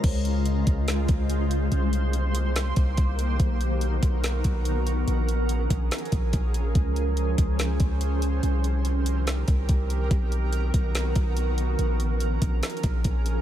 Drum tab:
CC |x-----------------------|------------------------|------------------------|------------------------|
HH |x--x--x--x--x--x--x--x--|x--x--x--x--x--x--x--x--|x--x--x--x--x--x--x--x--|x--x--x--x--xxxx--x--x--|
SD |------------o-----------|------------o-----------|------------o-----------|------------o-----------|
BD |o--------o-----o--------|---------------o--o-----|o--------o-----o--------|---------o-----o--o-----|

CC |------------------------|------------------------|------------------------|------------------------|
HH |x--x--x--x--x--x--x--x--|x--x--x--x--x--x--x--x--|x--x--x--x--x--x--x--x--|x--x--x--x--xxxx--x--x--|
SD |------------o-----------|------------o-----------|------------o-----------|------------o-----------|
BD |o--------o-----o--------|---------------o--o-----|o--------o-----o--------|---------o-----o--o-----|